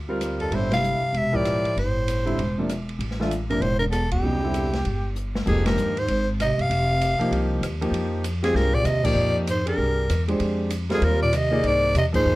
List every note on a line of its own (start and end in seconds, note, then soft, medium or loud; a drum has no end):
0.00 0.48 D2 medium
0.09 0.49 G3 medium
0.09 0.49 C4 medium
0.09 0.50 F4 medium
0.09 0.50 A#4 medium
0.21 cross-stick medium
0.21 hi-hat pedal medium
0.21 ride medium
0.40 0.55 F2 medium
0.40 0.56 A4 medium
0.40 ride soft
0.51 0.98 G1 medium
0.51 0.71 A2 medium
0.51 0.98 D3 medium
0.51 0.98 G3 medium
0.51 0.98 C4 soft
0.51 0.99 E4 medium
0.51 0.73 C5 medium
0.51 ride medium
0.72 1.16 C3 medium
0.72 1.19 F5 medium
0.72 snare medium
0.72 ride medium
0.83 hi-hat pedal soft
1.01 muted upright bass stroke soft
1.13 1.60 E1 medium
1.13 1.36 C3 medium
1.13 ride medium
1.17 1.37 E5 medium
1.32 1.76 A2 medium
1.32 1.73 F3 medium
1.32 1.74 E4 medium
1.32 1.74 G4 medium
1.32 1.73 A#4 medium
1.32 1.77 D5 medium
1.32 kick soft
1.45 cross-stick medium
1.45 hi-hat pedal medium
1.45 ride medium
1.64 muted upright bass stroke soft
1.64 ride soft
1.76 2.35 G1 medium
1.76 2.66 A2 medium
1.76 2.66 C5 medium
1.76 ride soft
2.08 hi-hat pedal medium
2.08 ride medium
2.25 2.36 D3 medium
2.25 2.36 G3 medium
2.25 2.37 C4 medium
2.25 2.37 E4 medium
2.25 ride soft
2.38 2.97 E1 medium
2.38 ride medium
2.58 2.68 C3 medium
2.58 2.68 F3 medium
2.58 2.69 A#3 medium
2.58 2.69 D4 medium
2.69 cross-stick medium
2.69 hi-hat pedal medium
2.69 ride medium
2.89 ride soft
2.99 3.58 A1 medium
2.99 ride medium
3.11 snare soft
3.20 3.30 E3 medium
3.20 3.30 A3 medium
3.20 3.30 D4 medium
3.20 3.30 F4 medium
3.20 snare soft
3.31 hi-hat pedal soft
3.31 ride medium
3.50 3.63 G2 medium
3.50 3.60 C3 medium
3.50 3.61 F3 medium
3.50 3.61 A#3 medium
3.50 3.61 D4 medium
3.50 3.63 A#4 medium
3.50 ride soft
3.60 4.19 E1 medium
3.60 3.79 A2 medium
3.60 3.79 C5 medium
3.60 ride soft
3.79 3.85 G2 medium
3.79 3.85 A#4 medium
3.88 4.08 E2 medium
3.88 4.10 A4 medium
3.92 cross-stick medium
3.92 hi-hat pedal medium
3.92 ride medium
4.09 5.10 E2 medium
4.09 5.12 G4 medium
4.09 kick medium
4.09 ride medium
4.22 4.82 C2 medium
4.22 4.40 C#3 medium
4.22 4.40 F#3 soft
4.22 4.41 B3 soft
4.22 4.41 D#4 medium
4.42 4.69 D3 medium
4.42 4.70 G3 soft
4.42 4.70 C4 soft
4.42 4.70 E4 medium
4.54 hi-hat pedal soft
4.54 ride medium
4.73 snare soft
4.73 ride soft
4.85 5.43 G1 medium
4.85 ride medium
5.16 hi-hat pedal soft
5.35 snare medium
5.46 5.75 F1 medium
5.46 5.65 F2 medium
5.46 5.92 F3 medium
5.46 5.93 A#3 medium
5.46 5.93 D#4 medium
5.46 5.93 G4 medium
5.46 5.66 G#4 medium
5.46 kick medium
5.46 crash medium
5.66 6.00 G2 medium
5.66 6.01 A#4 medium
5.66 snare medium
5.66 ride medium
5.77 6.06 D#2 medium
5.77 hi-hat pedal medium
5.97 6.29 G#2 medium
5.97 6.29 C5 medium
5.97 ride soft
6.08 6.55 G#1 medium
6.08 ride medium
6.40 6.62 C3 medium
6.40 6.63 D#5 medium
6.40 cross-stick medium
6.40 hi-hat pedal soft
6.40 ride medium
6.58 6.69 G1 medium
6.58 7.53 C3 medium
6.58 7.52 F5 medium
6.58 ride soft
6.70 7.16 F1 medium
6.70 ride medium
7.01 hi-hat pedal medium
7.01 ride medium
7.19 7.60 F3 medium
7.19 7.60 A#3 medium
7.19 7.61 D#4 medium
7.19 7.61 G4 medium
7.19 muted upright bass stroke soft
7.19 ride soft
7.31 7.60 C2 medium
7.31 ride medium
7.61 7.90 D#2 medium
7.61 cross-stick medium
7.61 hi-hat pedal medium
7.61 ride medium
7.81 8.22 F3 medium
7.81 8.22 A#3 medium
7.81 8.22 D#4 medium
7.81 8.22 G4 medium
7.81 ride soft
7.91 8.51 F2 medium
7.91 ride medium
8.24 hi-hat pedal medium
8.24 ride medium
8.43 8.55 F2 medium
8.43 8.83 C4 medium
8.43 8.84 F4 medium
8.43 8.83 G4 medium
8.43 8.84 G#4 medium
8.43 8.57 G#4 medium
8.43 snare soft
8.43 ride medium
8.54 8.83 C2 medium
8.54 8.76 G2 medium
8.54 8.76 A#4 loud
8.54 snare soft
8.74 8.85 A#2 medium
8.74 8.87 D5 medium
8.74 kick medium
8.84 9.14 D#2 medium
8.84 9.05 C3 medium
8.84 9.07 D#5 medium
8.84 cross-stick medium
8.84 hi-hat pedal medium
8.84 ride medium
9.03 9.35 A#2 medium
9.03 9.45 F3 medium
9.03 9.45 A#3 medium
9.03 9.45 D#4 medium
9.03 9.45 G4 medium
9.03 9.36 D5 loud
9.03 kick medium
9.03 crash medium
9.15 9.75 F2 medium
9.46 9.65 G#2 medium
9.46 hi-hat pedal medium
9.46 ride medium
9.50 9.67 C5 medium
9.65 10.24 G2 medium
9.65 10.07 D4 medium
9.65 10.07 G4 medium
9.65 10.07 G#4 medium
9.65 10.07 A#4 medium
9.65 10.25 A#4 medium
9.65 ride medium
9.78 10.07 C2 medium
10.10 10.38 E2 medium
10.10 cross-stick medium
10.10 hi-hat pedal medium
10.10 ride medium
10.28 10.68 G#3 medium
10.28 10.69 D4 medium
10.28 10.69 G4 medium
10.28 10.69 C5 medium
10.28 ride soft
10.40 10.99 F2 medium
10.40 ride medium
10.70 hi-hat pedal medium
10.70 ride medium
10.90 11.06 F2 medium
10.90 11.30 G3 medium
10.90 11.30 C4 medium
10.90 11.31 F4 medium
10.90 11.31 A#4 medium
10.90 snare soft
10.90 ride soft
10.94 11.06 G#4 medium
11.02 11.60 D#2 medium
11.02 11.22 D#2 medium
11.02 11.22 A#4 medium
11.02 ride medium
11.23 11.35 A#2 medium
11.23 11.37 D5 medium
11.33 11.66 C3 medium
11.33 11.69 D#5 medium
11.33 cross-stick medium
11.33 hi-hat pedal medium
11.33 ride medium
11.51 11.91 A#3 medium
11.51 11.92 D#4 medium
11.51 11.92 G#4 medium
11.51 11.92 D5 medium
11.63 11.92 C2 medium
11.63 11.95 G#2 medium
11.63 ride medium
11.67 11.96 D5 medium
11.95 12.23 E2 medium
11.95 12.04 C3 medium
11.95 12.06 D#5 medium
11.95 hi-hat pedal medium
11.95 ride medium
12.13 12.35 G#2 medium
12.13 12.35 F3 medium
12.13 12.35 A#3 medium
12.13 12.35 D#4 medium
12.13 12.35 G#4 medium
12.13 12.35 C5 loud
12.13 kick medium
12.13 crash medium
12.25 12.35 D#2 medium